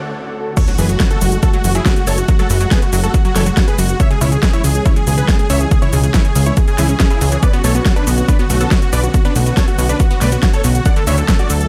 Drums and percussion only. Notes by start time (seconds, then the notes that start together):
0.57 kick, closed hi-hat, crash, shaker
0.68 closed hi-hat, shaker
0.78 open hi-hat, shaker
0.89 closed hi-hat, shaker
1.00 kick, snare, closed hi-hat, shaker
1.11 closed hi-hat, shaker
1.21 open hi-hat, shaker
1.32 closed hi-hat, shaker
1.43 kick, closed hi-hat, shaker
1.53 closed hi-hat, shaker
1.64 open hi-hat, shaker
1.75 closed hi-hat, shaker
1.86 kick, snare, closed hi-hat, shaker
1.96 closed hi-hat, shaker
2.07 open hi-hat, shaker
2.18 closed hi-hat, shaker
2.28 kick, closed hi-hat, shaker
2.39 closed hi-hat, shaker
2.50 open hi-hat, shaker
2.61 closed hi-hat, shaker
2.71 kick, snare, closed hi-hat, shaker
2.82 closed hi-hat, shaker
2.93 open hi-hat, shaker
3.04 closed hi-hat, shaker
3.14 kick, closed hi-hat, shaker
3.25 closed hi-hat, shaker
3.36 snare, open hi-hat, shaker
3.46 closed hi-hat, shaker
3.57 kick, snare, closed hi-hat, shaker
3.68 closed hi-hat, shaker
3.78 open hi-hat, shaker
3.89 closed hi-hat, shaker
4.00 kick, closed hi-hat, shaker
4.11 closed hi-hat, shaker
4.21 open hi-hat, shaker
4.32 closed hi-hat, shaker
4.43 kick, snare, closed hi-hat, shaker
4.53 closed hi-hat, shaker
4.64 open hi-hat, shaker
4.75 closed hi-hat, shaker
4.86 kick, closed hi-hat, shaker
4.96 closed hi-hat, shaker
5.07 open hi-hat, shaker
5.18 closed hi-hat, shaker
5.29 kick, snare, closed hi-hat, shaker
5.39 closed hi-hat, shaker
5.50 open hi-hat, shaker
5.61 closed hi-hat, shaker
5.71 kick, closed hi-hat, shaker
5.82 closed hi-hat, shaker
5.93 open hi-hat, shaker
6.03 closed hi-hat, shaker
6.14 kick, snare, closed hi-hat, shaker
6.25 closed hi-hat, shaker
6.36 open hi-hat, shaker
6.46 closed hi-hat, shaker
6.57 kick, closed hi-hat, shaker
6.68 closed hi-hat, shaker
6.78 snare, open hi-hat, shaker
6.89 closed hi-hat, shaker
7.00 kick, snare, closed hi-hat, shaker
7.11 closed hi-hat, shaker
7.21 open hi-hat, shaker
7.32 closed hi-hat, shaker
7.43 kick, closed hi-hat, shaker
7.53 closed hi-hat, shaker
7.64 open hi-hat, shaker
7.75 closed hi-hat, shaker
7.86 kick, snare, closed hi-hat, shaker
7.96 closed hi-hat, shaker
8.07 open hi-hat, shaker
8.18 closed hi-hat, shaker
8.28 kick, closed hi-hat, shaker
8.39 closed hi-hat, shaker
8.50 open hi-hat, shaker
8.61 closed hi-hat, shaker
8.71 kick, snare, closed hi-hat, shaker
8.82 closed hi-hat, shaker
8.93 open hi-hat, shaker
9.04 closed hi-hat, shaker
9.14 kick, closed hi-hat, shaker
9.25 closed hi-hat, shaker
9.36 open hi-hat, shaker
9.46 closed hi-hat, shaker
9.57 kick, snare, closed hi-hat, shaker
9.68 closed hi-hat, shaker
9.79 open hi-hat, shaker
9.89 closed hi-hat, shaker
10.00 kick, closed hi-hat, shaker
10.11 closed hi-hat, shaker
10.21 snare, open hi-hat, shaker
10.32 closed hi-hat, shaker
10.43 kick, snare, closed hi-hat, shaker
10.53 closed hi-hat, shaker
10.64 open hi-hat, shaker
10.75 closed hi-hat, shaker
10.86 kick, closed hi-hat, shaker
10.96 closed hi-hat, shaker
11.07 open hi-hat, shaker
11.18 closed hi-hat, shaker
11.28 kick, snare, closed hi-hat, shaker
11.39 closed hi-hat, shaker
11.50 open hi-hat, shaker
11.61 closed hi-hat, shaker